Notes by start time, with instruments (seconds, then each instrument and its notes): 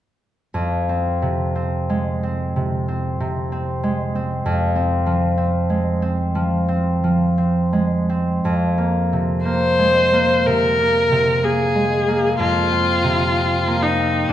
0.54 harp F2
0.89 harp C4
1.22 harp C3
1.55 harp C4
1.90 harp G#3
2.23 harp C4
2.56 harp C3
2.88 harp C4
3.20 harp C3
3.52 harp C4
3.83 harp G#3
4.15 harp C4
4.46 harp F2
4.76 harp C4
5.06 harp F3
5.38 harp C4
5.70 harp G#3
6.02 harp C4
6.35 harp F3
6.68 harp C4
7.04 harp F3
7.38 harp C4
7.73 harp G#3
8.09 harp C4
8.45 harp F2
8.78 harp A#3
9.13 harp C3
9.45 harp A#3, viola C5
9.79 harp G#3
10.13 harp A#3
10.46 harp C3, viola A#4
10.79 harp A#3
11.12 harp C3
11.43 harp A#3, viola G#4
11.75 harp G#3
12.08 harp A#3
12.39 harp F2, viola F4
12.71 harp C4
13.04 harp C3
13.36 harp C4
13.68 harp A#3
13.83 viola D#4
13.98 harp C4
14.29 harp F2, viola D4